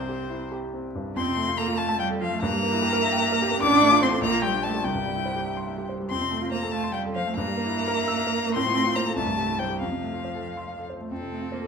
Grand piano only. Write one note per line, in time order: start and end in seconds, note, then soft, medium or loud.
0.00 1.12 C2 medium
0.09 0.44 G4 soft
0.30 0.65 E4 soft
0.52 0.86 G4 medium
0.74 1.08 C4 soft
0.95 1.16 G2 soft
1.16 2.39 F2 medium
1.26 1.43 C3 medium
1.36 1.53 A3 medium
1.48 1.64 F4 medium
1.58 1.74 A4 medium
1.68 1.84 F4 medium
1.78 1.95 F5 medium
1.89 2.06 A5 medium
2.00 2.17 F5 medium
2.10 2.27 A4 medium
2.21 2.38 F4 medium
2.33 2.43 A3 medium
2.42 3.59 G2 medium
2.53 2.69 G3 medium
2.63 2.79 A#3 medium
2.73 2.89 E4 medium
2.82 2.98 G4 medium
2.93 3.09 A#4 medium
3.02 3.18 E5 medium
3.12 3.28 G5 medium
3.22 3.38 E5 medium
3.32 3.48 A#4 medium
3.42 3.58 G4 medium
3.51 3.62 A#3 medium
3.62 4.21 A1 medium
3.72 3.89 A2 medium
3.82 3.99 A3 medium
3.91 4.08 F4 medium
4.02 4.19 C5 medium
4.11 4.23 A4 medium
4.21 4.82 A#1 medium
4.31 4.49 A#2 medium
4.43 4.60 G3 medium
4.53 4.70 D4 medium
4.63 4.80 D5 medium
4.74 4.85 G4 medium
4.84 6.06 C2 medium
4.94 5.12 G2 soft
5.05 5.22 G3 soft
5.15 5.33 E4 medium
5.25 5.43 C5 soft
5.36 5.53 G4 soft
5.46 5.64 E5 soft
5.57 5.74 C6 soft
5.67 5.85 E5 medium
5.78 5.95 G4 soft
5.89 6.06 C5 soft
6.00 6.11 G3 soft
6.11 7.32 F2 medium
6.21 6.37 C3 soft
6.31 6.48 A3 medium
6.42 6.58 F4 medium
6.52 6.68 C5 soft
6.62 6.79 A4 medium
6.73 6.90 F5 medium
6.84 7.00 C6 medium
6.94 7.11 F5 medium
7.06 7.22 A4 medium
7.16 7.32 C5 medium
7.27 7.37 A3 medium
7.37 8.52 G2 medium
7.48 7.63 G3 medium
7.57 7.73 A#3 medium
7.66 7.82 E4 medium
7.77 7.92 E5 medium
7.88 8.03 A#4 medium
7.98 8.12 E5 medium
8.08 8.23 E6 medium
8.17 8.32 E5 medium
8.27 8.42 A#4 medium
8.36 8.52 E5 medium
8.47 8.56 A#3 medium
8.56 9.15 A2 medium
8.67 8.82 F3 medium
8.76 8.92 A3 medium
8.87 9.02 F4 medium
8.96 9.12 C5 medium
9.06 9.16 A4 medium
9.16 9.79 C2 medium
9.26 9.44 G2 medium
9.37 9.55 G3 medium
9.49 9.66 E4 soft
9.60 9.77 C5 soft
9.70 9.81 G4 soft
9.81 11.06 F2 medium
9.92 10.09 C3 soft
10.02 10.20 A3 soft
10.13 10.31 F4 soft
10.24 10.42 C5 soft
10.35 10.52 A4 soft
10.46 10.63 F5 soft
10.57 10.74 C6 soft
10.68 10.85 F5 soft
10.79 10.96 A4 soft
10.90 11.07 C5 soft
11.01 11.11 A3 soft
11.11 11.67 F2 soft
11.21 11.37 C3 soft
11.31 11.47 A3 soft
11.41 11.58 F4 soft
11.52 11.67 C5 soft
11.62 11.67 A4 soft